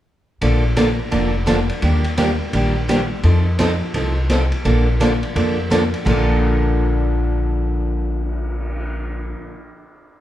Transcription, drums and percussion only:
0.41 kick soft
0.41 ride medium
0.77 kick soft
0.77 snare medium
0.77 hi-hat pedal medium
0.77 ride medium
1.12 kick soft
1.12 ride medium
1.47 kick soft
1.47 snare medium
1.47 hi-hat pedal medium
1.47 ride medium
1.69 ride soft
1.82 kick soft
1.82 ride medium
2.04 ride soft
2.17 kick soft
2.17 snare medium
2.17 hi-hat pedal medium
2.17 ride medium
2.53 kick soft
2.53 ride medium
2.88 kick soft
2.88 snare medium
2.88 hi-hat pedal medium
2.88 ride medium
3.23 kick soft
3.23 ride medium
3.59 kick soft
3.59 snare medium
3.59 hi-hat pedal medium
3.59 ride medium
3.94 kick soft
3.94 ride medium
4.29 kick soft
4.29 snare medium
4.29 hi-hat pedal medium
4.29 ride medium
4.52 ride soft
4.65 kick soft
4.65 ride medium
5.00 kick soft
5.00 snare medium
5.00 hi-hat pedal medium
5.00 ride medium
5.23 ride soft
5.36 kick soft
5.36 ride medium
5.71 kick soft
5.71 snare medium
5.71 hi-hat pedal medium
5.71 ride medium
5.94 ride soft
6.06 kick medium
6.06 crash medium
6.29 cymbal swell soft

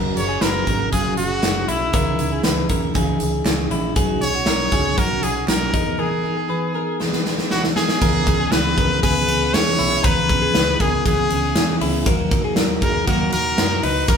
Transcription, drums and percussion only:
0.17 closed hi-hat medium
0.41 snare loud
0.41 clap medium
0.41 closed hi-hat medium
0.67 kick medium
0.67 closed hi-hat medium
0.93 kick medium
0.93 closed hi-hat medium
1.17 closed hi-hat medium
1.43 snare loud
1.43 clap medium
1.43 closed hi-hat medium
1.69 closed hi-hat medium
1.93 kick loud
1.93 closed hi-hat medium
2.19 closed hi-hat medium
2.44 snare loud
2.44 clap medium
2.44 closed hi-hat medium
2.69 kick medium
2.69 closed hi-hat medium
2.95 kick medium
2.95 closed hi-hat medium
3.20 closed hi-hat medium
3.46 snare loud
3.46 clap loud
3.46 closed hi-hat medium
3.71 closed hi-hat medium
3.96 kick loud
3.96 closed hi-hat loud
4.22 closed hi-hat medium
4.46 snare loud
4.46 clap medium
4.46 closed hi-hat medium
4.72 kick medium
4.72 closed hi-hat medium
4.98 kick medium
4.98 closed hi-hat medium
5.23 closed hi-hat medium
5.48 snare loud
5.48 clap medium
5.48 closed hi-hat medium
5.74 kick medium
5.74 closed hi-hat medium
7.00 snare medium
7.13 snare medium
7.26 snare medium
7.38 snare medium
7.51 snare medium
7.64 snare medium
7.76 snare loud
7.89 snare medium
8.02 kick loud
8.02 crash medium
8.27 kick medium
8.27 ride medium
8.52 snare loud
8.52 ride medium
8.78 kick medium
8.78 ride medium
9.03 kick medium
9.03 ride medium
9.28 ride medium
9.54 snare loud
9.54 ride medium
9.80 open hi-hat medium
9.80 ride medium
10.04 kick loud
10.04 hi-hat pedal medium
10.04 ride medium
10.29 kick medium
10.29 ride medium
10.55 snare loud
10.55 ride medium
10.80 kick medium
10.80 ride medium
11.06 kick medium
11.06 ride medium
11.30 ride medium
11.56 snare loud
11.56 ride medium
11.81 open hi-hat medium
11.81 ride medium
12.06 kick loud
12.06 hi-hat pedal medium
12.06 ride medium
12.31 kick loud
12.31 ride medium
12.56 snare loud
12.56 ride medium
12.82 kick medium
12.82 ride medium
13.07 kick medium
13.07 ride medium
13.32 ride medium
13.58 snare loud
13.58 ride medium
13.83 open hi-hat medium
13.83 ride medium
14.08 kick loud
14.08 hi-hat pedal medium
14.08 ride medium

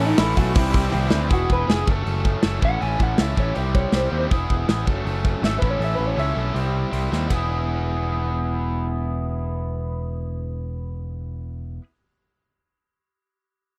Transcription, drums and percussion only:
0.18 snare loud
0.18 open hi-hat medium
0.37 kick medium
0.37 open hi-hat medium
0.55 kick loud
0.55 open hi-hat loud
0.73 kick loud
0.73 open hi-hat medium
0.92 high tom medium
1.11 snare loud
1.30 kick medium
1.30 open hi-hat soft
1.50 kick medium
1.70 snare medium
1.70 open hi-hat soft
1.87 kick medium
2.07 open hi-hat soft
2.25 kick medium
2.43 snare loud
2.43 open hi-hat soft
2.62 kick medium
2.82 open hi-hat soft
3.00 kick medium
3.18 snare loud
3.18 open hi-hat medium
3.37 kick medium
3.55 open hi-hat soft
3.75 kick medium
3.92 snare medium
3.92 open hi-hat soft
4.31 kick medium
4.31 open hi-hat soft
4.50 kick medium
4.69 snare medium
4.69 open hi-hat soft
4.87 kick medium
5.07 open hi-hat soft
5.25 kick medium
5.44 snare medium
5.44 open hi-hat soft
5.62 kick medium
5.82 open hi-hat soft
6.19 open hi-hat soft
6.56 open hi-hat soft
6.93 open hi-hat soft
7.13 snare soft
7.30 kick medium
7.30 ride medium

